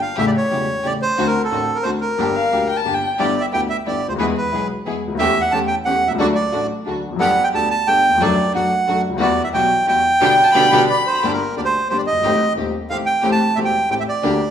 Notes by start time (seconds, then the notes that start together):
0.01 F5
0.17 A1 A2 C#3 G3 A3 C#4 E4 G4 E5
0.27 D5
0.37 C#5
0.50 E1 E2 C#3 G3 A3 C#4 E4 G4
0.83 A1 A2 C#3 G3 A3 C#4 E4 G4 D5
1.02 C5
1.17 D2 D3 A3 C4 D4 F#4
1.27 A#4
1.44 A4
1.52 A1 A2 D3 A3 C4 D4 F#4
1.75 A#4
1.83 D2 D3 A3 C4 D4 F#4 C5
2.01 A#4
2.18 G1 G2 D3 G3 A#3 D4 G4
2.35 F5
2.52 D2 D3 G3 A#3 D4 G4
2.69 G5
2.77 A5
2.85 G1 G2 D3 G3 A#3 D4 G4
2.94 G5
3.18 G1 G2 D3 G3 B3 E4 G4 D5
3.41 E5
3.52 D2 D3 G3 B3 E4 G4 G5
3.70 E5
3.85 G1 G2 D3 G3 B3 E4 G4 D5
4.08 C#2 D2 C5
4.16 D#2 E3 B3 E4 G#4 B4
4.20 E2 G#3 B3 G#4
4.37 B4
4.52 B1 B2 E3 G#3 B3 E4 G#4
4.86 E2 E3 G#3 B3 E4 G#4
5.07 C#2
5.12 D2 D#2
5.18 E2 E3 A3 C#4 G4 E5
5.41 F#5
5.51 E2 E3 A3 C#4 G4 A5
5.67 G5
5.85 E2 E3 A3 C#4 G4 F#5
6.07 B1 E5
6.11 C2 C#2
6.19 D2 D3 F#3 A3 D4 F#4 A4 D5
6.35 D5
6.52 A1 A2 F#3 A3 D4 F#4 A4
6.86 D2 D3 F#3 A3 D4 F#4 A4
7.08 E2
7.12 F2 F#2
7.19 G1 G2 G3 A3 B3 D4 G4 A4 F#5
7.44 G5
7.54 D2 D3 G3 A3 B3 D4 G4 A4 A5
7.70 A5
7.87 G1 G2 G3 A3 B3 D4 G4 A4 G5
8.09 D#2
8.14 E2 F2
8.20 F#2 F#3 A3 D4 F#4 A4 D5
8.53 F#2 F#3 A3 D4 F#4 A4 F#5
8.87 F#2 F#3 A3 D4 F#4 A4
9.09 C#2
9.13 D2 D#2
9.20 E2 E3 G3 B3 E4 F#4 D5
9.44 E5
9.53 B1 B2 E3 G3 B3 E4 F#4 G5
9.87 E2 E3 G3 B3 E4 F#4 G5
10.21 B2 D3 G3 B3 D4 G4 G5
10.44 A5
10.54 B2 D3 G3 B3 D4 G4 B5
10.72 B2 D3 G3 B3 D4 G4
10.89 D5 B5
11.06 C5
11.23 G1 G2 D3 G3 A#3 D4 G4
11.33 A#4
11.57 D2 D3 G3 A#3 D4 G4 D5
11.65 C5
11.90 G1 G2 D3 G3 A#3 D4 G4 C5
11.98 D5
12.07 D#5
12.12 F#1
12.17 G1
12.21 G#1 A1 A2 D#3 A3 C4 G4
12.25 G4
12.57 D#1 D#2 D#3 A3 C4 G4
12.90 A1 A2 D#3 A3 C4 G4 F5
13.06 G5
13.23 A1 A2 E3 A3 C4 G4
13.32 A5
13.56 E1 E2 E3 A3 C4 G4 E5
13.65 G5
13.90 A1 A2 E3 A3 C4 G4 G5
14.00 E5
14.09 D5
14.23 D2 D3 G3 A#3 D4 G4